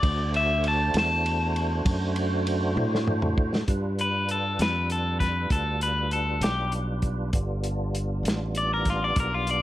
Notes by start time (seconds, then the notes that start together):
Already playing: D5
0.02 D2 A3 D4 F#4 C5, kick, ride
0.34 E5, ride
0.64 ride
0.68 A5
0.94 E2, snare, ride
0.98 A5
1.26 ride
1.56 ride
1.85 F#2, kick, ride
2.16 ride
2.47 ride
2.76 A2, high tom
2.95 snare
3.07 mid tom
3.22 mid tom
3.38 kick
3.55 snare
3.68 G2 G3 D4 F4 B4, kick, closed hi-hat
3.99 B4, closed hi-hat
4.29 A4, closed hi-hat
4.59 F2 B4, snare, closed hi-hat
4.90 A4, closed hi-hat
5.20 B4, kick, snare, closed hi-hat
5.50 D2 A4, kick, closed hi-hat
5.81 B4, closed hi-hat
6.11 A4, closed hi-hat
6.41 B1 G4, snare, closed hi-hat
6.72 closed hi-hat
7.02 kick, closed hi-hat
7.33 G1 G3 B3 D4 F4, kick, closed hi-hat
7.64 closed hi-hat
7.95 closed hi-hat
8.23 A1, closed hi-hat
8.28 snare
8.55 D5, closed hi-hat
8.74 A#4
8.85 kick, snare, closed hi-hat
8.90 F4
9.04 D5
9.16 B1 A#4, kick, closed hi-hat
9.34 F4
9.47 D5, closed hi-hat